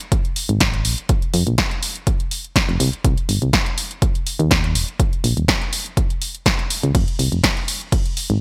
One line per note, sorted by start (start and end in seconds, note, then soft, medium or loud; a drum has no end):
0.01 closed hi-hat soft
0.12 kick loud
0.12 closed hi-hat loud
0.25 closed hi-hat soft
0.36 open hi-hat loud
0.49 0.86 G#1 medium
0.49 closed hi-hat soft
0.60 kick loud
0.60 snare loud
0.60 closed hi-hat loud
0.74 closed hi-hat soft
0.85 0.95 A#1 loud
0.85 open hi-hat loud
0.98 closed hi-hat soft
1.09 kick loud
1.09 closed hi-hat loud
1.22 closed hi-hat soft
1.34 1.44 F2 medium
1.34 open hi-hat loud
1.47 1.55 A#1 medium
1.47 closed hi-hat soft
1.58 kick loud
1.58 snare loud
1.58 closed hi-hat medium
1.71 closed hi-hat soft
1.83 open hi-hat loud
1.96 closed hi-hat soft
2.07 kick loud
2.07 closed hi-hat loud
2.20 closed hi-hat soft
2.31 open hi-hat loud
2.44 closed hi-hat soft
2.56 kick loud
2.56 snare loud
2.56 closed hi-hat medium
2.69 2.77 F1 loud
2.69 closed hi-hat soft
2.80 2.90 C2 loud
2.80 open hi-hat loud
2.93 closed hi-hat soft
3.05 3.14 C2 loud
3.05 kick loud
3.05 closed hi-hat loud
3.18 closed hi-hat soft
3.29 3.39 G1 medium
3.29 open hi-hat loud
3.42 3.51 C2 medium
3.42 closed hi-hat soft
3.53 kick loud
3.53 snare loud
3.53 closed hi-hat medium
3.66 closed hi-hat soft
3.78 open hi-hat loud
3.91 closed hi-hat soft
4.02 kick loud
4.02 closed hi-hat medium
4.15 closed hi-hat soft
4.27 open hi-hat loud
4.39 4.77 D#2 medium
4.39 closed hi-hat soft
4.51 kick loud
4.51 snare loud
4.51 closed hi-hat medium
4.64 closed hi-hat soft
4.75 4.85 D#1 medium
4.75 open hi-hat loud
4.88 closed hi-hat soft
5.00 kick loud
5.00 closed hi-hat medium
5.13 closed hi-hat soft
5.24 5.34 A#1 medium
5.24 open hi-hat loud
5.37 5.46 D#1 medium
5.37 closed hi-hat soft
5.48 kick loud
5.48 snare loud
5.48 closed hi-hat medium
5.62 closed hi-hat soft
5.73 open hi-hat loud
5.86 closed hi-hat soft
5.97 kick loud
5.97 closed hi-hat medium
6.10 closed hi-hat soft
6.22 open hi-hat loud
6.35 closed hi-hat soft
6.46 kick loud
6.46 snare loud
6.46 closed hi-hat medium
6.59 closed hi-hat soft
6.70 open hi-hat loud
6.83 6.92 C#2 medium
6.83 closed hi-hat soft
6.95 7.05 F1 loud
6.95 kick loud
6.95 closed hi-hat medium
6.95 ride medium
7.08 closed hi-hat soft
7.19 7.29 C2 medium
7.19 open hi-hat loud
7.32 7.41 F1 medium
7.32 closed hi-hat soft
7.44 kick loud
7.44 snare loud
7.44 closed hi-hat medium
7.44 ride medium
7.57 closed hi-hat soft
7.68 open hi-hat loud
7.81 closed hi-hat soft
7.92 kick loud
7.92 closed hi-hat medium
7.92 ride medium
8.06 closed hi-hat soft
8.17 open hi-hat loud
8.30 8.41 G#1 medium
8.30 closed hi-hat soft